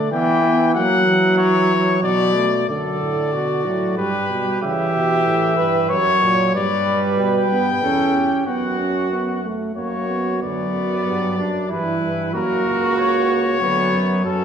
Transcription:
Already playing: D3 A3
0.11 E3 B3 G5
0.44 B3
0.75 F#3 A#3 F#5
1.07 E3
1.38 C#5
2.03 B2 F#3 D5
2.35 A3
2.68 F#2 D3 A4 D5
3.01 A2
3.33 B2 F#4
3.65 A2 F#3
3.97 G2 G3 G4 B4
4.29 B2
4.62 C#3 E3 G4 E5
4.94 B2
5.26 A2
5.56 G2 B4
5.89 F#2 F#3 C#5
6.23 A#2
6.54 G2 G3 B4 D5
7.17 B2 G5
7.49 G2 B3
7.82 E2 C#4 A4
8.16 G4
8.46 F#2 B3 F#4 F#5
8.79 C#4
9.12 B3
9.44 A3
9.75 F#2 A#3 F#4 C#5
10.08 B3
10.41 D2 F#3 B3 D5
10.74 F#2
11.06 G2
11.38 F#2 D4
11.69 G2 E3 E4 B4
12.02 G2
12.34 F#2 A#3 F#4 A#4
12.66 C#2
12.98 C#5
13.60 D2 F#3 B3
13.93 F#2
14.24 F#2 F#3 C#4 A4

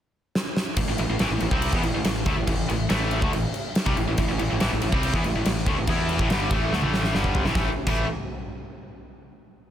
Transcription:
0.35 snare
0.57 snare
0.77 A1 A2 E3, kick, crash
0.88 A1 A2 E3
0.98 A1 A2 E3, crash
1.09 A1 A2 E3
1.19 A1 A2 E3, snare, crash
1.30 A1 A2 E3
1.40 A1 A2 E3, crash
1.51 C2 C3 G3 C4, kick
1.62 crash
1.73 E2 E3 B3, kick, snare
1.83 A1 A2 E3, crash
1.94 A1 A2 E3
2.05 A1 A2 E3, snare, crash
2.26 D2 D3 A3, kick, crash
2.37 A1 A2 E3
2.47 A1 A2 E3, kick, crash
2.69 A1 A2 E3, crash
2.89 A1 A2 E3 A3, snare, crash
3.11 crash
3.22 D2 D3 A3, kick
3.33 A1 A2 E3, crash
3.54 crash
3.75 snare, crash
3.86 C2 C3 G3, kick
3.97 A1 A2 E3, crash
4.08 A1 A2 E3
4.18 A1 A2 E3, kick, crash
4.28 A1 A2 E3
4.39 A1 A2 E3, crash
4.50 A1 A2 E3
4.60 A1 A2 E3, snare, crash
4.71 A1 A2 E3
4.82 A1 A2 E3, crash
4.92 C2 C3 G3 C4, kick
5.03 crash
5.14 E2 E3 B3, kick
5.24 A1 A2 E3, crash
5.35 A1 A2 E3
5.46 A1 A2 E3, snare, crash
5.66 D2 D3 A3, kick, crash
5.78 A1 A2 E3
5.87 E2 E3 B3 E4, kick, crash
6.09 crash
6.19 A1 A2 E3, kick
6.30 G1 G2 D3 G3, snare, crash
6.51 A1 A2 E3 A3, kick, crash
6.72 D2 D3 A3, snare
6.82 A1 A2 E3 A3, high tom
6.94 snare
7.04 snare
7.13 G1 G2 D3 G3, snare
7.24 kick
7.35 floor tom
7.45 A1 A2 E3, snare
7.55 A1 A2 E3 A3, kick, snare
7.87 A1 A2 E3 A3, kick, crash

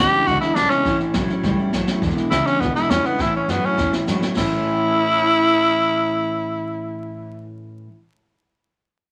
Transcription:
Already playing: E2 G4
0.00 D2 C#3 E3 G#3 D4 E4
0.13 E3 G#3 D4 E4, snare
0.26 C#2 E2 B2 D3 E3 G#3 D4 F#4, kick, snare
0.30 E4
0.41 G#3 D4 E4, snare
0.45 E3
0.55 B1 E2 C#3 E3 G#3 D4, kick, snare, hi-hat pedal
0.59 E4
0.70 G#3 C#4 D4 E4, muted upright bass stroke, snare
0.74 E3
0.85 A1 A2 E3 A3 C#4 E4, kick, snare
1.00 A3 C#4 E4, snare
1.14 B1 A2 E3 F#3 A3 C#4 E4, kick, snare, hi-hat pedal
1.29 A3 C#4 E4, muted upright bass stroke, snare
1.43 C#2 A2 E3 G3 A3 C#4 E4, kick, snare
1.59 A3 C#4 E4
1.73 A1 A2 E3 F#3 A3 C#4 E4, kick, snare, hi-hat pedal
1.87 A3 C#4 E4, snare
2.02 E2 B2 E3 G#3 D4 E4, kick, snare
2.10 snare
2.17 E3 G#3 D4 E4, muted upright bass stroke, snare
2.31 C#2 E2 B2 C#3 E3 G#3 D4 E4, snare, hi-hat pedal
2.46 E3 G#3 C#4 D4 E4, muted upright bass stroke, snare
2.60 D2 E2 B2 E3 G#3 B3 D4 E4, kick, snare
2.75 E3 G#3 D4 E4, snare
2.83 snare
2.90 E2 B2 C#3 E3 G#3 C#4 D4 E4, snare, hi-hat pedal
3.04 E3 G#3 B3 D4 E4, snare
3.19 A2 E3 A3 C#4 E4, kick, snare
3.34 A3 C#4 E4
3.48 F#2 A2 E3 F#3 A3 B3 C#4 E4, snare, hi-hat pedal
3.63 A3 C#4 E4
3.77 E2 A2 E3 A3 E4, kick, snare
3.91 A3 C#4 E4, snare
4.07 G#2 A2 E3 F#3 A3 C#4 E4, snare, hi-hat pedal
4.22 A3 C#4 E4, muted upright bass stroke, snare
4.35 A1 A2 E3 A3 E4, kick, snare, crash
4.39 A3 C#4 E4
4.45 E4

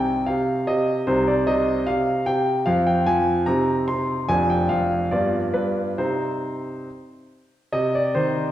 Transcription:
Already playing: C2 C3 C4 D#4 G5 G#5
0.26 C3 F5
0.67 C3 D#5
1.07 C2 C3 C4 D#4 C5
1.28 D5
1.47 C3 D#5
1.87 C3 F5
2.26 C3 G5
2.66 F2 F3 C4 F4 F5
2.87 G5
3.06 F3 G#5
3.46 C3 C4 D#4 A#5
3.88 C3 C6
4.28 F1 F2 D4 F4 G#5
4.50 G5
4.69 F2 F5
5.11 G2 B3 F4 D5
5.54 G2 B4
5.98 C3 C4 D#4 C5
7.72 C3 G4 D#5
7.95 D5
8.15 D#3 C5

